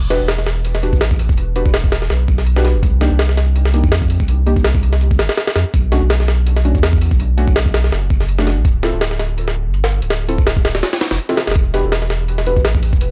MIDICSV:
0, 0, Header, 1, 4, 480
1, 0, Start_track
1, 0, Key_signature, 1, "minor"
1, 0, Tempo, 363636
1, 1814, Time_signature, 4, 2, 24, 8
1, 17307, End_track
2, 0, Start_track
2, 0, Title_t, "Synth stab"
2, 0, Program_c, 0, 62
2, 133, Note_on_c, 0, 62, 93
2, 133, Note_on_c, 0, 66, 86
2, 133, Note_on_c, 0, 67, 86
2, 133, Note_on_c, 0, 71, 105
2, 231, Note_off_c, 0, 67, 0
2, 232, Note_off_c, 0, 62, 0
2, 232, Note_off_c, 0, 66, 0
2, 232, Note_off_c, 0, 71, 0
2, 1094, Note_on_c, 0, 62, 80
2, 1094, Note_on_c, 0, 66, 71
2, 1094, Note_on_c, 0, 67, 74
2, 1094, Note_on_c, 0, 71, 85
2, 1192, Note_off_c, 0, 62, 0
2, 1192, Note_off_c, 0, 66, 0
2, 1192, Note_off_c, 0, 67, 0
2, 1192, Note_off_c, 0, 71, 0
2, 2054, Note_on_c, 0, 62, 86
2, 2054, Note_on_c, 0, 66, 83
2, 2054, Note_on_c, 0, 67, 80
2, 2054, Note_on_c, 0, 71, 101
2, 2152, Note_off_c, 0, 62, 0
2, 2152, Note_off_c, 0, 66, 0
2, 2152, Note_off_c, 0, 67, 0
2, 2152, Note_off_c, 0, 71, 0
2, 3385, Note_on_c, 0, 66, 82
2, 3385, Note_on_c, 0, 67, 87
2, 3385, Note_on_c, 0, 71, 103
2, 3386, Note_on_c, 0, 62, 92
2, 3519, Note_off_c, 0, 62, 0
2, 3519, Note_off_c, 0, 66, 0
2, 3519, Note_off_c, 0, 67, 0
2, 3519, Note_off_c, 0, 71, 0
2, 3974, Note_on_c, 0, 58, 95
2, 3974, Note_on_c, 0, 62, 86
2, 3974, Note_on_c, 0, 63, 87
2, 3974, Note_on_c, 0, 67, 102
2, 4072, Note_off_c, 0, 58, 0
2, 4072, Note_off_c, 0, 62, 0
2, 4072, Note_off_c, 0, 63, 0
2, 4072, Note_off_c, 0, 67, 0
2, 4933, Note_on_c, 0, 58, 78
2, 4933, Note_on_c, 0, 62, 72
2, 4933, Note_on_c, 0, 63, 71
2, 4934, Note_on_c, 0, 67, 87
2, 5032, Note_off_c, 0, 58, 0
2, 5032, Note_off_c, 0, 62, 0
2, 5032, Note_off_c, 0, 63, 0
2, 5032, Note_off_c, 0, 67, 0
2, 5894, Note_on_c, 0, 63, 81
2, 5895, Note_on_c, 0, 58, 90
2, 5895, Note_on_c, 0, 62, 81
2, 5895, Note_on_c, 0, 67, 102
2, 5992, Note_off_c, 0, 62, 0
2, 5992, Note_off_c, 0, 63, 0
2, 5992, Note_off_c, 0, 67, 0
2, 5993, Note_off_c, 0, 58, 0
2, 7813, Note_on_c, 0, 57, 94
2, 7814, Note_on_c, 0, 61, 87
2, 7814, Note_on_c, 0, 62, 88
2, 7815, Note_on_c, 0, 66, 103
2, 7912, Note_off_c, 0, 57, 0
2, 7912, Note_off_c, 0, 61, 0
2, 7912, Note_off_c, 0, 62, 0
2, 7912, Note_off_c, 0, 66, 0
2, 8773, Note_on_c, 0, 57, 79
2, 8773, Note_on_c, 0, 61, 73
2, 8773, Note_on_c, 0, 62, 71
2, 8773, Note_on_c, 0, 66, 86
2, 8871, Note_off_c, 0, 61, 0
2, 8871, Note_off_c, 0, 62, 0
2, 8872, Note_off_c, 0, 57, 0
2, 8872, Note_off_c, 0, 66, 0
2, 9734, Note_on_c, 0, 62, 84
2, 9734, Note_on_c, 0, 66, 99
2, 9735, Note_on_c, 0, 57, 89
2, 9735, Note_on_c, 0, 61, 82
2, 9832, Note_off_c, 0, 62, 0
2, 9832, Note_off_c, 0, 66, 0
2, 9833, Note_off_c, 0, 57, 0
2, 9833, Note_off_c, 0, 61, 0
2, 11067, Note_on_c, 0, 57, 93
2, 11067, Note_on_c, 0, 61, 87
2, 11068, Note_on_c, 0, 62, 88
2, 11068, Note_on_c, 0, 66, 102
2, 11200, Note_off_c, 0, 57, 0
2, 11200, Note_off_c, 0, 61, 0
2, 11200, Note_off_c, 0, 66, 0
2, 11201, Note_off_c, 0, 62, 0
2, 11656, Note_on_c, 0, 60, 92
2, 11656, Note_on_c, 0, 65, 89
2, 11656, Note_on_c, 0, 69, 104
2, 11657, Note_on_c, 0, 64, 86
2, 11753, Note_off_c, 0, 60, 0
2, 11753, Note_off_c, 0, 64, 0
2, 11753, Note_off_c, 0, 65, 0
2, 11753, Note_off_c, 0, 69, 0
2, 13574, Note_on_c, 0, 60, 87
2, 13574, Note_on_c, 0, 64, 84
2, 13574, Note_on_c, 0, 65, 81
2, 13574, Note_on_c, 0, 69, 101
2, 13672, Note_off_c, 0, 60, 0
2, 13672, Note_off_c, 0, 64, 0
2, 13672, Note_off_c, 0, 65, 0
2, 13672, Note_off_c, 0, 69, 0
2, 14904, Note_on_c, 0, 64, 85
2, 14904, Note_on_c, 0, 69, 102
2, 14905, Note_on_c, 0, 60, 94
2, 14905, Note_on_c, 0, 65, 85
2, 15039, Note_off_c, 0, 60, 0
2, 15039, Note_off_c, 0, 64, 0
2, 15039, Note_off_c, 0, 65, 0
2, 15039, Note_off_c, 0, 69, 0
2, 15494, Note_on_c, 0, 66, 84
2, 15494, Note_on_c, 0, 71, 102
2, 15495, Note_on_c, 0, 62, 91
2, 15495, Note_on_c, 0, 67, 88
2, 15592, Note_off_c, 0, 66, 0
2, 15592, Note_off_c, 0, 71, 0
2, 15593, Note_off_c, 0, 62, 0
2, 15593, Note_off_c, 0, 67, 0
2, 16454, Note_on_c, 0, 67, 75
2, 16455, Note_on_c, 0, 62, 80
2, 16455, Note_on_c, 0, 66, 74
2, 16455, Note_on_c, 0, 71, 87
2, 16552, Note_off_c, 0, 62, 0
2, 16552, Note_off_c, 0, 66, 0
2, 16552, Note_off_c, 0, 67, 0
2, 16552, Note_off_c, 0, 71, 0
2, 17307, End_track
3, 0, Start_track
3, 0, Title_t, "Sub bass"
3, 0, Program_c, 1, 38
3, 0, Note_on_c, 1, 28, 100
3, 245, Note_off_c, 1, 28, 0
3, 266, Note_on_c, 1, 28, 99
3, 1226, Note_on_c, 1, 33, 98
3, 1246, Note_off_c, 1, 28, 0
3, 1685, Note_off_c, 1, 33, 0
3, 1706, Note_on_c, 1, 28, 93
3, 2165, Note_off_c, 1, 28, 0
3, 2187, Note_on_c, 1, 28, 95
3, 2757, Note_off_c, 1, 28, 0
3, 2774, Note_on_c, 1, 35, 83
3, 2992, Note_off_c, 1, 35, 0
3, 3014, Note_on_c, 1, 35, 103
3, 3625, Note_on_c, 1, 28, 94
3, 3645, Note_off_c, 1, 35, 0
3, 3723, Note_off_c, 1, 28, 0
3, 3734, Note_on_c, 1, 36, 101
3, 4084, Note_off_c, 1, 36, 0
3, 4105, Note_on_c, 1, 36, 100
3, 5065, Note_on_c, 1, 41, 101
3, 5084, Note_off_c, 1, 36, 0
3, 5524, Note_off_c, 1, 41, 0
3, 5545, Note_on_c, 1, 36, 93
3, 6004, Note_off_c, 1, 36, 0
3, 6026, Note_on_c, 1, 36, 100
3, 6854, Note_on_c, 1, 31, 94
3, 6874, Note_off_c, 1, 36, 0
3, 6972, Note_off_c, 1, 31, 0
3, 7335, Note_on_c, 1, 41, 92
3, 7453, Note_off_c, 1, 41, 0
3, 7574, Note_on_c, 1, 35, 100
3, 7924, Note_off_c, 1, 35, 0
3, 7945, Note_on_c, 1, 35, 97
3, 8908, Note_on_c, 1, 40, 101
3, 8928, Note_off_c, 1, 35, 0
3, 9365, Note_off_c, 1, 40, 0
3, 9389, Note_on_c, 1, 35, 93
3, 9846, Note_off_c, 1, 35, 0
3, 9868, Note_on_c, 1, 35, 96
3, 10437, Note_off_c, 1, 35, 0
3, 10455, Note_on_c, 1, 30, 83
3, 10672, Note_off_c, 1, 30, 0
3, 10696, Note_on_c, 1, 30, 106
3, 11307, Note_on_c, 1, 35, 91
3, 11327, Note_off_c, 1, 30, 0
3, 11404, Note_off_c, 1, 35, 0
3, 11416, Note_on_c, 1, 26, 99
3, 11765, Note_off_c, 1, 26, 0
3, 11785, Note_on_c, 1, 26, 94
3, 12747, Note_on_c, 1, 31, 102
3, 12767, Note_off_c, 1, 26, 0
3, 13205, Note_off_c, 1, 31, 0
3, 13227, Note_on_c, 1, 26, 94
3, 13685, Note_off_c, 1, 26, 0
3, 13707, Note_on_c, 1, 26, 99
3, 14277, Note_off_c, 1, 26, 0
3, 14665, Note_on_c, 1, 29, 90
3, 14762, Note_off_c, 1, 29, 0
3, 15145, Note_on_c, 1, 29, 84
3, 15243, Note_off_c, 1, 29, 0
3, 15255, Note_on_c, 1, 28, 100
3, 15605, Note_off_c, 1, 28, 0
3, 15626, Note_on_c, 1, 28, 98
3, 16585, Note_on_c, 1, 33, 101
3, 16605, Note_off_c, 1, 28, 0
3, 17044, Note_off_c, 1, 33, 0
3, 17066, Note_on_c, 1, 28, 93
3, 17307, Note_off_c, 1, 28, 0
3, 17307, End_track
4, 0, Start_track
4, 0, Title_t, "Drums"
4, 136, Note_on_c, 9, 38, 54
4, 136, Note_on_c, 9, 46, 70
4, 268, Note_off_c, 9, 38, 0
4, 268, Note_off_c, 9, 46, 0
4, 375, Note_on_c, 9, 38, 121
4, 375, Note_on_c, 9, 46, 91
4, 507, Note_off_c, 9, 38, 0
4, 507, Note_off_c, 9, 46, 0
4, 508, Note_on_c, 9, 38, 43
4, 614, Note_off_c, 9, 38, 0
4, 614, Note_on_c, 9, 38, 55
4, 614, Note_on_c, 9, 46, 64
4, 746, Note_off_c, 9, 38, 0
4, 746, Note_off_c, 9, 46, 0
4, 854, Note_on_c, 9, 46, 91
4, 986, Note_off_c, 9, 46, 0
4, 986, Note_on_c, 9, 38, 52
4, 1094, Note_on_c, 9, 46, 72
4, 1118, Note_off_c, 9, 38, 0
4, 1226, Note_off_c, 9, 46, 0
4, 1226, Note_on_c, 9, 36, 94
4, 1333, Note_on_c, 9, 38, 117
4, 1333, Note_on_c, 9, 46, 87
4, 1358, Note_off_c, 9, 36, 0
4, 1465, Note_off_c, 9, 38, 0
4, 1465, Note_off_c, 9, 46, 0
4, 1466, Note_on_c, 9, 36, 92
4, 1574, Note_on_c, 9, 46, 78
4, 1598, Note_off_c, 9, 36, 0
4, 1706, Note_off_c, 9, 46, 0
4, 1706, Note_on_c, 9, 36, 95
4, 1814, Note_on_c, 9, 46, 90
4, 1838, Note_off_c, 9, 36, 0
4, 1946, Note_off_c, 9, 46, 0
4, 2055, Note_on_c, 9, 46, 68
4, 2186, Note_on_c, 9, 36, 91
4, 2187, Note_off_c, 9, 46, 0
4, 2293, Note_on_c, 9, 38, 120
4, 2293, Note_on_c, 9, 46, 92
4, 2318, Note_off_c, 9, 36, 0
4, 2425, Note_off_c, 9, 38, 0
4, 2425, Note_off_c, 9, 46, 0
4, 2426, Note_on_c, 9, 36, 90
4, 2535, Note_on_c, 9, 38, 102
4, 2535, Note_on_c, 9, 46, 76
4, 2558, Note_off_c, 9, 36, 0
4, 2666, Note_off_c, 9, 38, 0
4, 2666, Note_on_c, 9, 38, 38
4, 2667, Note_off_c, 9, 46, 0
4, 2774, Note_off_c, 9, 38, 0
4, 2774, Note_on_c, 9, 38, 49
4, 2774, Note_on_c, 9, 46, 63
4, 2906, Note_off_c, 9, 38, 0
4, 2906, Note_off_c, 9, 46, 0
4, 3014, Note_on_c, 9, 36, 87
4, 3145, Note_on_c, 9, 38, 34
4, 3145, Note_on_c, 9, 46, 58
4, 3146, Note_off_c, 9, 36, 0
4, 3252, Note_off_c, 9, 46, 0
4, 3252, Note_on_c, 9, 46, 87
4, 3277, Note_off_c, 9, 38, 0
4, 3384, Note_off_c, 9, 46, 0
4, 3385, Note_on_c, 9, 38, 51
4, 3494, Note_off_c, 9, 38, 0
4, 3494, Note_on_c, 9, 38, 38
4, 3494, Note_on_c, 9, 46, 70
4, 3626, Note_off_c, 9, 38, 0
4, 3626, Note_off_c, 9, 46, 0
4, 3733, Note_on_c, 9, 46, 88
4, 3734, Note_on_c, 9, 36, 114
4, 3865, Note_off_c, 9, 46, 0
4, 3866, Note_off_c, 9, 36, 0
4, 3974, Note_on_c, 9, 38, 53
4, 3974, Note_on_c, 9, 46, 69
4, 4106, Note_off_c, 9, 38, 0
4, 4106, Note_off_c, 9, 46, 0
4, 4212, Note_on_c, 9, 38, 121
4, 4212, Note_on_c, 9, 46, 92
4, 4344, Note_off_c, 9, 38, 0
4, 4344, Note_off_c, 9, 46, 0
4, 4344, Note_on_c, 9, 38, 43
4, 4453, Note_off_c, 9, 38, 0
4, 4453, Note_on_c, 9, 38, 56
4, 4453, Note_on_c, 9, 46, 69
4, 4585, Note_off_c, 9, 38, 0
4, 4585, Note_off_c, 9, 46, 0
4, 4693, Note_on_c, 9, 46, 91
4, 4824, Note_on_c, 9, 38, 52
4, 4825, Note_off_c, 9, 46, 0
4, 4932, Note_on_c, 9, 46, 74
4, 4956, Note_off_c, 9, 38, 0
4, 5064, Note_off_c, 9, 46, 0
4, 5065, Note_on_c, 9, 36, 88
4, 5171, Note_on_c, 9, 38, 117
4, 5171, Note_on_c, 9, 46, 90
4, 5197, Note_off_c, 9, 36, 0
4, 5303, Note_off_c, 9, 38, 0
4, 5303, Note_off_c, 9, 46, 0
4, 5305, Note_on_c, 9, 36, 92
4, 5412, Note_on_c, 9, 46, 82
4, 5437, Note_off_c, 9, 36, 0
4, 5544, Note_off_c, 9, 46, 0
4, 5545, Note_on_c, 9, 36, 92
4, 5652, Note_on_c, 9, 46, 88
4, 5677, Note_off_c, 9, 36, 0
4, 5784, Note_off_c, 9, 46, 0
4, 5893, Note_on_c, 9, 46, 69
4, 6025, Note_off_c, 9, 46, 0
4, 6025, Note_on_c, 9, 36, 92
4, 6131, Note_on_c, 9, 38, 119
4, 6131, Note_on_c, 9, 46, 90
4, 6157, Note_off_c, 9, 36, 0
4, 6263, Note_off_c, 9, 38, 0
4, 6263, Note_off_c, 9, 46, 0
4, 6265, Note_on_c, 9, 36, 96
4, 6373, Note_on_c, 9, 46, 78
4, 6397, Note_off_c, 9, 36, 0
4, 6503, Note_on_c, 9, 38, 47
4, 6505, Note_off_c, 9, 46, 0
4, 6613, Note_on_c, 9, 46, 61
4, 6635, Note_off_c, 9, 38, 0
4, 6745, Note_off_c, 9, 46, 0
4, 6745, Note_on_c, 9, 36, 81
4, 6852, Note_on_c, 9, 38, 110
4, 6852, Note_on_c, 9, 46, 83
4, 6877, Note_off_c, 9, 36, 0
4, 6984, Note_off_c, 9, 38, 0
4, 6984, Note_off_c, 9, 46, 0
4, 6984, Note_on_c, 9, 38, 101
4, 6984, Note_on_c, 9, 46, 77
4, 7094, Note_off_c, 9, 38, 0
4, 7094, Note_off_c, 9, 46, 0
4, 7094, Note_on_c, 9, 38, 101
4, 7094, Note_on_c, 9, 46, 80
4, 7226, Note_off_c, 9, 38, 0
4, 7226, Note_off_c, 9, 46, 0
4, 7226, Note_on_c, 9, 38, 98
4, 7226, Note_on_c, 9, 46, 76
4, 7334, Note_off_c, 9, 38, 0
4, 7334, Note_off_c, 9, 46, 0
4, 7334, Note_on_c, 9, 38, 107
4, 7334, Note_on_c, 9, 46, 78
4, 7466, Note_off_c, 9, 38, 0
4, 7466, Note_off_c, 9, 46, 0
4, 7574, Note_on_c, 9, 36, 111
4, 7574, Note_on_c, 9, 46, 90
4, 7706, Note_off_c, 9, 36, 0
4, 7706, Note_off_c, 9, 46, 0
4, 7814, Note_on_c, 9, 38, 52
4, 7814, Note_on_c, 9, 46, 71
4, 7946, Note_off_c, 9, 38, 0
4, 7946, Note_off_c, 9, 46, 0
4, 8053, Note_on_c, 9, 38, 122
4, 8053, Note_on_c, 9, 46, 89
4, 8185, Note_off_c, 9, 38, 0
4, 8185, Note_off_c, 9, 46, 0
4, 8185, Note_on_c, 9, 38, 42
4, 8293, Note_off_c, 9, 38, 0
4, 8293, Note_on_c, 9, 38, 57
4, 8293, Note_on_c, 9, 46, 66
4, 8425, Note_off_c, 9, 38, 0
4, 8425, Note_off_c, 9, 46, 0
4, 8535, Note_on_c, 9, 46, 88
4, 8666, Note_on_c, 9, 38, 50
4, 8667, Note_off_c, 9, 46, 0
4, 8775, Note_on_c, 9, 46, 71
4, 8798, Note_off_c, 9, 38, 0
4, 8907, Note_off_c, 9, 46, 0
4, 8907, Note_on_c, 9, 36, 92
4, 9017, Note_on_c, 9, 38, 113
4, 9017, Note_on_c, 9, 46, 90
4, 9039, Note_off_c, 9, 36, 0
4, 9148, Note_on_c, 9, 36, 94
4, 9149, Note_off_c, 9, 38, 0
4, 9149, Note_off_c, 9, 46, 0
4, 9258, Note_on_c, 9, 46, 82
4, 9280, Note_off_c, 9, 36, 0
4, 9388, Note_on_c, 9, 36, 94
4, 9390, Note_off_c, 9, 46, 0
4, 9498, Note_on_c, 9, 46, 90
4, 9520, Note_off_c, 9, 36, 0
4, 9630, Note_off_c, 9, 46, 0
4, 9738, Note_on_c, 9, 46, 70
4, 9868, Note_on_c, 9, 36, 94
4, 9870, Note_off_c, 9, 46, 0
4, 9978, Note_on_c, 9, 38, 120
4, 9978, Note_on_c, 9, 46, 95
4, 10000, Note_off_c, 9, 36, 0
4, 10109, Note_on_c, 9, 36, 96
4, 10110, Note_off_c, 9, 38, 0
4, 10110, Note_off_c, 9, 46, 0
4, 10219, Note_on_c, 9, 38, 106
4, 10219, Note_on_c, 9, 46, 75
4, 10241, Note_off_c, 9, 36, 0
4, 10351, Note_off_c, 9, 38, 0
4, 10351, Note_off_c, 9, 46, 0
4, 10352, Note_on_c, 9, 38, 39
4, 10460, Note_off_c, 9, 38, 0
4, 10460, Note_on_c, 9, 38, 52
4, 10460, Note_on_c, 9, 46, 63
4, 10592, Note_off_c, 9, 38, 0
4, 10592, Note_off_c, 9, 46, 0
4, 10697, Note_on_c, 9, 36, 91
4, 10829, Note_off_c, 9, 36, 0
4, 10830, Note_on_c, 9, 38, 33
4, 10830, Note_on_c, 9, 46, 59
4, 10936, Note_off_c, 9, 46, 0
4, 10936, Note_on_c, 9, 46, 90
4, 10962, Note_off_c, 9, 38, 0
4, 11068, Note_off_c, 9, 46, 0
4, 11068, Note_on_c, 9, 38, 54
4, 11178, Note_off_c, 9, 38, 0
4, 11178, Note_on_c, 9, 38, 39
4, 11178, Note_on_c, 9, 46, 69
4, 11310, Note_off_c, 9, 38, 0
4, 11310, Note_off_c, 9, 46, 0
4, 11416, Note_on_c, 9, 36, 112
4, 11416, Note_on_c, 9, 46, 90
4, 11548, Note_off_c, 9, 36, 0
4, 11548, Note_off_c, 9, 46, 0
4, 11657, Note_on_c, 9, 38, 54
4, 11657, Note_on_c, 9, 46, 72
4, 11789, Note_off_c, 9, 38, 0
4, 11789, Note_off_c, 9, 46, 0
4, 11895, Note_on_c, 9, 38, 120
4, 11895, Note_on_c, 9, 46, 91
4, 12027, Note_off_c, 9, 38, 0
4, 12027, Note_off_c, 9, 46, 0
4, 12027, Note_on_c, 9, 38, 43
4, 12137, Note_off_c, 9, 38, 0
4, 12137, Note_on_c, 9, 38, 54
4, 12137, Note_on_c, 9, 46, 67
4, 12269, Note_off_c, 9, 38, 0
4, 12269, Note_off_c, 9, 46, 0
4, 12377, Note_on_c, 9, 46, 91
4, 12509, Note_off_c, 9, 46, 0
4, 12510, Note_on_c, 9, 38, 54
4, 12642, Note_off_c, 9, 38, 0
4, 12856, Note_on_c, 9, 46, 80
4, 12988, Note_off_c, 9, 46, 0
4, 12988, Note_on_c, 9, 38, 103
4, 12988, Note_on_c, 9, 46, 59
4, 13120, Note_off_c, 9, 38, 0
4, 13120, Note_off_c, 9, 46, 0
4, 13228, Note_on_c, 9, 46, 75
4, 13337, Note_off_c, 9, 46, 0
4, 13337, Note_on_c, 9, 38, 102
4, 13337, Note_on_c, 9, 46, 62
4, 13469, Note_off_c, 9, 38, 0
4, 13469, Note_off_c, 9, 46, 0
4, 13577, Note_on_c, 9, 46, 83
4, 13707, Note_on_c, 9, 36, 96
4, 13709, Note_off_c, 9, 46, 0
4, 13816, Note_on_c, 9, 38, 123
4, 13816, Note_on_c, 9, 46, 91
4, 13839, Note_off_c, 9, 36, 0
4, 13947, Note_on_c, 9, 36, 97
4, 13948, Note_off_c, 9, 38, 0
4, 13948, Note_off_c, 9, 46, 0
4, 14056, Note_on_c, 9, 38, 106
4, 14056, Note_on_c, 9, 46, 75
4, 14079, Note_off_c, 9, 36, 0
4, 14187, Note_off_c, 9, 38, 0
4, 14187, Note_off_c, 9, 46, 0
4, 14187, Note_on_c, 9, 38, 103
4, 14187, Note_on_c, 9, 46, 77
4, 14295, Note_off_c, 9, 38, 0
4, 14295, Note_off_c, 9, 46, 0
4, 14295, Note_on_c, 9, 38, 108
4, 14295, Note_on_c, 9, 46, 81
4, 14427, Note_off_c, 9, 38, 0
4, 14427, Note_off_c, 9, 46, 0
4, 14428, Note_on_c, 9, 38, 105
4, 14428, Note_on_c, 9, 46, 78
4, 14535, Note_off_c, 9, 38, 0
4, 14535, Note_off_c, 9, 46, 0
4, 14535, Note_on_c, 9, 38, 110
4, 14535, Note_on_c, 9, 46, 83
4, 14666, Note_off_c, 9, 38, 0
4, 14666, Note_off_c, 9, 46, 0
4, 14666, Note_on_c, 9, 38, 97
4, 14666, Note_on_c, 9, 46, 75
4, 14774, Note_off_c, 9, 46, 0
4, 14774, Note_on_c, 9, 46, 79
4, 14798, Note_off_c, 9, 38, 0
4, 14905, Note_on_c, 9, 38, 46
4, 14906, Note_off_c, 9, 46, 0
4, 15013, Note_off_c, 9, 38, 0
4, 15013, Note_on_c, 9, 38, 105
4, 15013, Note_on_c, 9, 46, 81
4, 15145, Note_off_c, 9, 38, 0
4, 15145, Note_off_c, 9, 46, 0
4, 15145, Note_on_c, 9, 38, 86
4, 15145, Note_on_c, 9, 46, 64
4, 15200, Note_off_c, 9, 38, 0
4, 15200, Note_off_c, 9, 46, 0
4, 15200, Note_on_c, 9, 38, 85
4, 15200, Note_on_c, 9, 46, 64
4, 15254, Note_off_c, 9, 46, 0
4, 15254, Note_on_c, 9, 46, 90
4, 15255, Note_on_c, 9, 36, 110
4, 15332, Note_off_c, 9, 38, 0
4, 15386, Note_off_c, 9, 46, 0
4, 15387, Note_off_c, 9, 36, 0
4, 15495, Note_on_c, 9, 38, 52
4, 15495, Note_on_c, 9, 46, 71
4, 15627, Note_off_c, 9, 38, 0
4, 15627, Note_off_c, 9, 46, 0
4, 15735, Note_on_c, 9, 38, 118
4, 15735, Note_on_c, 9, 46, 91
4, 15866, Note_off_c, 9, 38, 0
4, 15866, Note_on_c, 9, 38, 43
4, 15867, Note_off_c, 9, 46, 0
4, 15973, Note_off_c, 9, 38, 0
4, 15973, Note_on_c, 9, 38, 54
4, 15973, Note_on_c, 9, 46, 68
4, 16105, Note_off_c, 9, 38, 0
4, 16105, Note_off_c, 9, 46, 0
4, 16212, Note_on_c, 9, 46, 89
4, 16344, Note_off_c, 9, 46, 0
4, 16344, Note_on_c, 9, 38, 54
4, 16452, Note_on_c, 9, 46, 72
4, 16476, Note_off_c, 9, 38, 0
4, 16584, Note_off_c, 9, 46, 0
4, 16585, Note_on_c, 9, 36, 88
4, 16693, Note_on_c, 9, 38, 113
4, 16693, Note_on_c, 9, 46, 88
4, 16717, Note_off_c, 9, 36, 0
4, 16825, Note_off_c, 9, 38, 0
4, 16825, Note_off_c, 9, 46, 0
4, 16825, Note_on_c, 9, 36, 93
4, 16932, Note_on_c, 9, 46, 83
4, 16957, Note_off_c, 9, 36, 0
4, 17064, Note_off_c, 9, 46, 0
4, 17066, Note_on_c, 9, 36, 89
4, 17173, Note_on_c, 9, 46, 91
4, 17198, Note_off_c, 9, 36, 0
4, 17305, Note_off_c, 9, 46, 0
4, 17307, End_track
0, 0, End_of_file